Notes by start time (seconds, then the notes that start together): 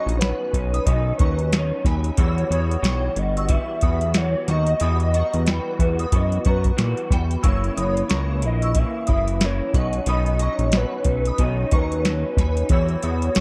Already playing: F#3 C#4 D#4 D#5 A#5 C#6
0.06 A#1, closed hi-hat
0.19 B2 D#3 F#3 C#4 D#4 B4 F#5 B5, snare, closed hi-hat
0.52 B1 F#3 C#4 D#4, kick, closed hi-hat
0.74 B5 D#6, closed hi-hat
0.85 B1 D#3 F#3 C#4 D#5, kick, closed hi-hat
0.90 D#4
1.18 D#2 C#4 D#4 B4 C#6, kick, closed hi-hat
1.22 F#3 A#5
1.39 closed hi-hat
1.53 B2 D#3 F#3 C#4 D#4, snare, closed hi-hat
1.85 D#2 F#3 C#4 D#4 G#5 B5, kick, snare, closed hi-hat
2.04 closed hi-hat
2.17 E2 E3 G3 B3 F#4 C#5 B5 E6, kick, closed hi-hat
2.38 closed hi-hat
2.49 E2 G3 B3 F#4 C#5 B5 D#6, closed hi-hat
2.71 closed hi-hat
2.82 B1 E3 G3 B3 F#4 G5 C#6, snare, closed hi-hat
3.14 G1 G3 B3 F#4, closed hi-hat
3.18 D#5
3.37 C#6 E6, closed hi-hat
3.48 E3 G3 B3 F#4 E5, kick, closed hi-hat
3.81 E2 G3 B3 F#4 B5 D#6, kick, closed hi-hat
4.01 closed hi-hat
4.14 E3 G3 B3 F#4 C#5, snare, closed hi-hat
4.48 D#2 G3 B3 F#4 D#5 A#5 C#6, snare, closed hi-hat
4.67 closed hi-hat
4.80 E2 E3 G3 B3 F#4 B5 D#6, closed hi-hat
4.84 D#5
5.00 closed hi-hat
5.14 G3 B3 F#4 A#5 C#6, closed hi-hat
5.34 E2, closed hi-hat
5.46 E3 G3 B3 F#4 B4 G5 B5, snare, closed hi-hat
5.79 E2 G3 B3 F#4, kick, closed hi-hat
5.99 B5 D#6, closed hi-hat
6.12 F#2 E3 B3 F#4 D#5, kick, closed hi-hat
6.32 closed hi-hat
6.45 F#2 B3 F#4 A#5 C#6, kick, closed hi-hat
6.50 B4
6.64 kick, closed hi-hat
6.77 A#2 E3 G3 B3 F#4, snare, closed hi-hat
6.97 closed hi-hat
7.10 E2 G3 B3 F#4 G5 B5, kick, snare, closed hi-hat
7.31 closed hi-hat
7.42 F#1 F#2 C#3 E3 A#3 E4 C#6 E6, kick, closed hi-hat
7.48 C#5
7.64 closed hi-hat
7.75 F#1 E3 A#3 E4 D#6, closed hi-hat
7.79 C#5 B5
7.97 closed hi-hat
8.08 C#2 F#2 C#3 E3 A#3 E4 A#5 C#6, snare, closed hi-hat
8.42 A#1 E3 A#3 E4, closed hi-hat
8.46 D#5
8.62 C#6 E6, closed hi-hat
8.75 C#3 E3 A#3 E4 E5, kick, closed hi-hat
9.07 F#1 E3 A#3 E4 B5 D#6, kick, closed hi-hat
9.28 closed hi-hat
9.41 F#2 C#3 E3 A#3 E4 C#5, snare, closed hi-hat
9.74 B1 F#3 C#4 D#4 D#5 F#5 C#6, kick, snare, closed hi-hat
9.93 closed hi-hat
10.06 B1 B2 D#3 F#3 C#4 D#4 B5 D#6, closed hi-hat
10.11 D#5
10.26 closed hi-hat
10.39 F#3 C#4 D#4 A#5 C#6, closed hi-hat
10.59 A#1, closed hi-hat
10.72 B2 D#3 F#3 C#4 D#4 F#5 B5, snare, closed hi-hat
10.76 B4
11.04 B1 C#4 D#4, kick, closed hi-hat
11.09 F#3
11.25 B5 D#6, closed hi-hat
11.38 B1 D#3 F#3 C#4 D#4, kick, closed hi-hat
11.42 D#5
11.71 D#2 F#3 C#4 D#4 B4 A#5 C#6, kick, closed hi-hat
11.92 closed hi-hat
12.05 B2 D#3 F#3 C#4 D#4, snare, closed hi-hat
12.37 D#2 C#4 D#4 G#5 B5, kick, snare, closed hi-hat
12.41 F#3
12.57 closed hi-hat
12.69 E2 E3 G3 B3 F#4 C#5 B5 E6, kick, closed hi-hat
12.89 closed hi-hat
13.03 E2 G3 B3 F#4 C#5 B5 D#6, closed hi-hat
13.22 closed hi-hat
13.35 B1 E3 G3 B3 F#4 G5 C#6, snare, closed hi-hat